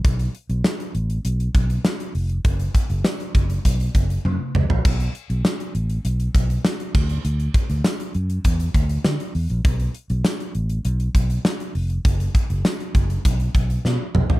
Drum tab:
CC |----------------|----------------|x-------------x-|----------------|
HH |xxxx-xxxxxxx-xox|xxxx-xxxxxxx----|-xxx-xxxxxxx-x-x|xxxx-xxxxxxx-xox|
TB |----x-------x---|----x-----------|----x-------x---|----x-------x---|
SD |----o-------o---|----o-----------|----o-------o---|----o-------o---|
T1 |----------------|------------o---|----------------|----------------|
T2 |----------------|--------------o-|----------------|----------------|
FT |----------------|---------------o|----------------|----------------|
BD |o---------o-----|o-o---o-o-o-----|o---------o---o-|--o-----o-o-----|

CC |----------------|----------------|
HH |xxxx-xxxxxxx-xox|xxxx-xxxxxxx----|
TB |----x-------x---|----x-----------|
SD |----o-------o---|----o-------o---|
T1 |----------------|----------------|
T2 |----------------|--------------o-|
FT |----------------|---------------o|
BD |o---------o-----|o-o---o-o-o-----|